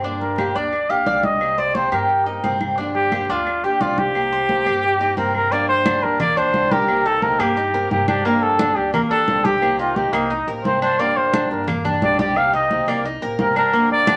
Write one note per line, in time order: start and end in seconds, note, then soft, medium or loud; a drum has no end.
0.00 0.49 G2 medium
0.00 0.36 D3 medium
0.00 0.37 F3 medium
0.00 0.37 A#3 medium
0.04 0.37 D4 medium
0.04 0.38 G4 medium
0.04 high conga soft
0.21 0.57 A#4 medium
0.21 high conga soft
0.37 0.54 D3 medium
0.37 0.55 F3 medium
0.37 0.55 A#3 medium
0.37 0.55 D4 medium
0.37 0.55 G4 medium
0.37 0.54 G4 medium
0.37 high conga medium
0.37 claves medium
0.55 1.03 D2 medium
0.55 0.72 A#3 soft
0.55 0.89 D4 medium
0.55 0.72 D4 soft
0.55 0.72 G4 soft
0.55 0.91 D5 loud
0.55 high conga soft
0.72 muted steel-string acoustic guitar stroke medium
0.72 high conga soft
0.72 claves medium
0.89 1.06 A#3 soft
0.89 1.06 D4 soft
0.89 1.06 G4 soft
0.89 1.06 G4 medium
0.89 1.26 F5 medium
0.89 high conga soft
1.06 1.86 C2 medium
1.06 1.40 D3 medium
1.06 1.40 F3 medium
1.06 1.40 A#3 medium
1.06 1.41 D4 medium
1.06 1.41 G4 medium
1.06 1.23 D5 medium
1.06 high conga medium
1.23 1.60 D#5 loud
1.23 high conga medium
1.40 1.73 C3 medium
1.40 1.74 D#3 medium
1.40 1.74 A#3 medium
1.40 1.74 C4 medium
1.40 1.75 G4 medium
1.40 high conga soft
1.40 claves medium
1.58 1.91 C5 medium
1.58 1.77 D5 medium
1.58 high conga soft
1.75 1.91 C3 medium
1.75 1.92 D#3 medium
1.75 1.92 A#3 medium
1.75 1.92 C4 medium
1.75 1.91 G4 medium
1.75 1.92 C5 medium
1.75 high conga medium
1.92 2.40 G2 loud
1.92 2.08 A#3 soft
1.92 2.08 C4 medium
1.92 2.25 G4 medium
1.92 2.09 G4 medium
1.92 2.57 A#4 medium
1.92 high conga soft
1.92 claves medium
2.09 muted steel-string acoustic guitar stroke medium
2.09 high conga soft
2.26 2.43 A#3 soft
2.26 2.43 C4 soft
2.26 2.43 D#4 medium
2.26 2.43 G4 soft
2.26 high conga soft
2.43 3.23 G2 medium
2.43 2.77 C3 medium
2.43 2.77 D#3 medium
2.43 2.77 A#3 medium
2.43 2.77 C4 medium
2.43 2.78 C4 medium
2.43 2.78 G4 medium
2.43 high conga medium
2.61 high conga medium
2.61 claves medium
2.77 3.10 D3 medium
2.77 3.10 F3 medium
2.77 3.11 A#3 medium
2.77 3.11 D4 medium
2.77 3.12 G4 medium
2.77 high conga soft
2.95 3.32 G4 loud
2.95 high conga soft
3.11 3.28 D3 medium
3.11 3.28 F3 medium
3.11 3.29 A#3 medium
3.11 3.29 D4 medium
3.11 3.29 G4 medium
3.11 3.28 G4 medium
3.11 high conga medium
3.11 claves medium
3.29 3.77 D2 loud
3.29 3.45 A#3 soft
3.29 3.63 D4 medium
3.29 3.46 D4 soft
3.29 3.66 F4 medium
3.29 3.46 G4 medium
3.29 high conga soft
3.46 muted steel-string acoustic guitar stroke medium
3.46 high conga soft
3.46 claves medium
3.64 3.80 A#3 soft
3.64 3.80 D4 soft
3.64 3.80 G4 soft
3.64 3.80 G4 medium
3.64 3.83 G4 medium
3.64 high conga soft
3.80 4.60 C2 medium
3.80 4.14 D3 medium
3.80 4.14 F3 medium
3.80 4.14 A#3 medium
3.80 4.15 D4 medium
3.80 4.00 F4 medium
3.80 4.14 G4 medium
3.80 3.97 D5 medium
3.80 high conga medium
3.98 5.17 G4 loud
3.98 high conga medium
4.14 4.48 C3 medium
4.14 4.48 D#3 medium
4.14 4.48 A#3 medium
4.14 4.49 C4 medium
4.14 4.49 G4 medium
4.14 high conga soft
4.14 claves medium
4.32 4.65 C5 medium
4.32 high conga soft
4.49 4.65 C3 medium
4.49 4.65 D#3 medium
4.49 4.66 A#3 medium
4.49 4.65 C4 medium
4.49 4.64 G4 medium
4.49 high conga medium
4.65 5.14 G2 medium
4.65 4.82 A#3 soft
4.65 4.82 C4 soft
4.65 4.82 G4 medium
4.65 4.99 G4 medium
4.65 high conga soft
4.65 claves medium
4.83 muted steel-string acoustic guitar stroke medium
4.83 high conga soft
4.99 5.16 A#3 soft
4.99 5.17 C4 soft
4.99 5.17 D#4 medium
4.99 5.16 G4 soft
4.99 high conga soft
5.17 5.97 G2 medium
5.17 5.50 C3 medium
5.17 5.51 D#3 medium
5.17 5.51 A#3 medium
5.17 5.51 C4 medium
5.17 5.51 G4 medium
5.17 5.33 A#4 loud
5.17 high conga medium
5.35 5.54 A#4 loud
5.35 claves medium
5.51 5.84 D3 medium
5.51 5.85 F3 medium
5.51 5.85 A#3 medium
5.51 5.85 D4 medium
5.51 5.86 G4 medium
5.51 5.68 D5 loud
5.51 high conga soft
5.69 6.04 C5 loud
5.69 high conga soft
5.85 6.02 D3 medium
5.85 6.02 F3 medium
5.85 6.02 A#3 medium
5.85 6.19 D4 medium
5.85 6.02 D4 medium
5.85 6.01 G4 medium
5.85 high conga loud
5.85 claves medium
6.02 6.50 D2 loud
6.02 6.19 A#3 soft
6.02 6.19 D4 soft
6.02 6.19 G4 soft
6.02 6.19 A#4 loud
6.02 high conga soft
6.20 6.37 A#3 medium
6.20 6.39 D5 loud
6.20 muted steel-string acoustic guitar stroke medium
6.20 high conga soft
6.20 low conga medium
6.20 claves medium
6.36 6.53 A#3 soft
6.36 6.53 D4 soft
6.36 6.70 D4 medium
6.36 6.53 G4 soft
6.36 6.73 C5 loud
6.36 high conga soft
6.53 7.34 C2 medium
6.53 6.87 D3 medium
6.53 6.87 F3 medium
6.53 6.87 A#3 medium
6.53 6.88 D4 medium
6.53 6.88 G4 medium
6.53 high conga medium
6.71 7.04 G4 medium
6.71 7.08 A#4 loud
6.71 high conga medium
6.88 7.20 C3 medium
6.88 7.21 D#3 medium
6.88 7.21 A#3 medium
6.88 7.22 C4 medium
6.88 7.22 G4 medium
6.88 high conga soft
6.88 claves medium
7.05 7.39 D#4 medium
7.05 7.24 A4 loud
7.05 high conga soft
7.21 7.38 C3 medium
7.21 7.39 D#3 medium
7.21 7.39 A#3 medium
7.21 7.38 C4 medium
7.21 7.38 G4 medium
7.21 7.41 A#4 medium
7.21 high conga medium
7.39 7.87 G2 loud
7.39 7.56 A#3 medium
7.39 7.55 A#3 soft
7.39 7.56 C4 medium
7.39 7.56 G4 medium
7.39 7.90 G4 medium
7.39 high conga soft
7.39 claves medium
7.56 7.73 D#4 medium
7.56 muted steel-string acoustic guitar stroke medium
7.56 high conga soft
7.73 7.90 A#3 soft
7.73 7.90 C4 soft
7.73 7.90 G4 soft
7.73 8.07 A#4 medium
7.73 high conga soft
7.90 8.70 G2 medium
7.90 8.24 C3 medium
7.90 8.24 D#3 medium
7.90 8.24 A#3 medium
7.90 8.25 C4 medium
7.90 8.07 G4 medium
7.90 8.25 G4 medium
7.90 high conga medium
8.08 8.25 D4 medium
8.08 8.24 G4 medium
8.08 high conga medium
8.08 claves medium
8.25 8.58 D3 medium
8.25 8.58 F3 medium
8.25 8.58 A#3 medium
8.25 8.59 A#3 medium
8.25 8.59 D4 medium
8.25 8.59 G4 medium
8.25 8.44 A#4 loud
8.25 high conga soft
8.42 8.78 A4 loud
8.42 high conga soft
8.59 8.76 D3 medium
8.59 8.76 F3 medium
8.59 8.76 A#3 medium
8.59 8.92 D4 medium
8.59 8.76 D4 medium
8.59 8.75 G4 medium
8.59 high conga loud
8.59 claves medium
8.76 9.24 D2 medium
8.76 8.92 A#3 soft
8.76 8.92 D4 medium
8.76 8.92 G4 medium
8.76 8.93 G4 medium
8.76 high conga soft
8.93 9.10 A#3 medium
8.93 9.01 A#4 medium
8.93 muted steel-string acoustic guitar stroke medium
8.93 high conga soft
8.93 low conga medium
8.93 claves medium
9.10 9.27 A#3 soft
9.10 9.44 D4 medium
9.10 9.27 D4 soft
9.10 9.27 G4 soft
9.10 9.46 A4 loud
9.10 high conga soft
9.27 10.07 C2 medium
9.27 9.61 D3 medium
9.27 9.61 F3 medium
9.27 9.61 A#3 medium
9.27 9.62 D4 medium
9.27 9.61 G4 medium
9.27 high conga medium
9.45 9.78 G4 loud
9.45 9.78 G4 medium
9.45 high conga medium
9.61 9.95 C3 medium
9.61 9.95 D#3 medium
9.61 9.95 A#3 medium
9.61 9.96 C4 medium
9.61 9.96 G4 medium
9.61 high conga soft
9.61 claves medium
9.79 10.12 D#4 medium
9.79 9.97 F4 medium
9.79 high conga soft
9.96 10.12 C3 medium
9.96 10.13 D#3 medium
9.96 10.13 A#3 medium
9.96 10.13 C4 medium
9.96 10.15 G4 medium
9.96 10.12 G4 medium
9.96 high conga medium
10.13 10.45 C2 medium
10.13 10.30 A#3 loud
10.13 10.29 A#3 soft
10.13 10.30 C4 medium
10.13 10.49 D#4 medium
10.13 10.30 G4 soft
10.13 high conga soft
10.13 claves medium
10.30 10.47 D#4 medium
10.30 muted steel-string acoustic guitar stroke medium
10.30 high conga soft
10.47 10.63 A1 medium
10.47 10.64 A#3 soft
10.47 10.64 C4 soft
10.47 10.64 G4 soft
10.47 10.81 A#4 medium
10.47 high conga soft
10.64 11.44 G1 medium
10.64 10.98 C3 medium
10.64 10.98 D#3 medium
10.64 10.98 A#3 medium
10.64 10.99 C4 medium
10.64 10.99 G4 medium
10.64 10.80 C5 medium
10.64 high conga medium
10.82 10.99 D4 medium
10.82 11.01 C5 loud
10.82 claves medium
10.99 11.32 D3 medium
10.99 11.32 F3 medium
10.99 11.32 A#3 medium
10.99 11.33 A#3 medium
10.99 11.33 D4 medium
10.99 11.33 G4 medium
10.99 11.18 D5 medium
10.99 high conga soft
11.17 11.50 C5 loud
11.17 high conga soft
11.33 11.49 D3 medium
11.33 11.50 F3 medium
11.33 11.50 A#3 medium
11.33 11.67 D4 medium
11.33 11.50 D4 medium
11.33 11.49 G4 medium
11.33 high conga loud
11.33 claves medium
11.50 11.98 G2 medium
11.50 11.67 A#3 soft
11.50 11.67 D4 medium
11.50 11.67 G4 soft
11.50 11.67 A#4 medium
11.50 high conga soft
11.68 11.84 A#3 medium
11.68 muted steel-string acoustic guitar stroke medium
11.68 high conga soft
11.68 low conga medium
11.68 claves medium
11.84 12.01 A#3 soft
11.84 12.18 D4 medium
11.84 12.01 D4 soft
11.84 12.01 G4 medium
11.84 high conga soft
11.84 low conga medium
12.01 12.81 C2 medium
12.01 12.35 D3 medium
12.01 12.36 F3 medium
12.01 12.35 A#3 medium
12.01 12.36 D4 medium
12.01 12.36 G4 medium
12.01 12.19 D5 loud
12.01 high conga medium
12.19 12.52 G4 medium
12.19 12.38 D5 loud
12.19 high conga medium
12.36 12.69 C3 medium
12.36 12.69 D#3 medium
12.36 12.70 A#3 medium
12.36 12.70 C4 medium
12.36 12.70 G4 medium
12.36 12.54 F5 loud
12.36 high conga soft
12.36 claves medium
12.53 12.87 D#4 medium
12.53 12.90 D#5 loud
12.53 high conga soft
12.70 12.87 C3 medium
12.70 12.87 D#3 medium
12.70 12.87 A#3 medium
12.70 12.87 C4 medium
12.70 12.86 G4 medium
12.70 high conga medium
12.87 13.19 C2 loud
12.87 13.04 A#3 medium
12.87 13.04 A#3 soft
12.87 13.04 C4 soft
12.87 13.04 G4 medium
12.87 13.05 D5 medium
12.87 high conga soft
12.87 claves medium
13.04 13.22 D#4 medium
13.04 muted steel-string acoustic guitar stroke medium
13.04 high conga soft
13.21 13.37 A1 medium
13.21 13.38 A#3 soft
13.21 13.38 C4 soft
13.21 13.38 G4 soft
13.21 13.55 A#4 medium
13.21 high conga soft
13.38 14.17 G1 medium
13.38 13.72 C3 medium
13.38 13.72 D#3 medium
13.38 13.72 A#3 medium
13.38 13.73 C4 medium
13.38 13.73 G4 medium
13.38 13.56 A#4 loud
13.38 high conga medium
13.56 13.73 D4 medium
13.56 13.89 A#4 loud
13.56 claves medium
13.72 14.05 D3 medium
13.72 14.06 F3 medium
13.72 14.07 A#3 medium
13.72 14.07 D4 medium
13.72 14.07 G4 medium
13.72 high conga soft
13.91 14.17 D5 loud
13.91 high conga soft
14.07 14.17 D3 medium
14.07 14.17 F3 medium
14.07 14.17 A#3 medium
14.07 14.17 D4 medium
14.07 14.17 G4 medium
14.07 high conga loud
14.07 claves medium